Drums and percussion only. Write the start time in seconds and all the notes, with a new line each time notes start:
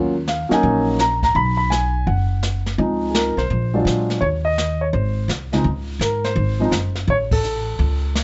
0.28 snare, hi-hat pedal
0.51 snare
0.63 brush sweep, kick
0.99 snare, hi-hat pedal
1.23 kick, snare
1.35 brush sweep, kick
1.72 snare, hi-hat pedal
2.07 brush sweep, kick
2.43 snare, hi-hat pedal
2.66 snare
2.79 brush sweep, kick
3.15 snare, hi-hat pedal
3.38 snare
3.50 brush sweep, kick
3.87 snare, hi-hat pedal
4.10 snare
4.22 brush sweep, kick
4.58 snare, hi-hat pedal
4.93 brush sweep, kick
5.29 snare, hi-hat pedal
5.53 snare
5.65 brush sweep, kick
6.01 snare, hi-hat pedal
6.24 snare
6.36 brush sweep, kick
6.72 snare, hi-hat pedal
6.95 snare
7.08 brush sweep, kick
7.31 kick, ride
7.44 hi-hat pedal
7.79 brush sweep, kick
8.15 snare, hi-hat pedal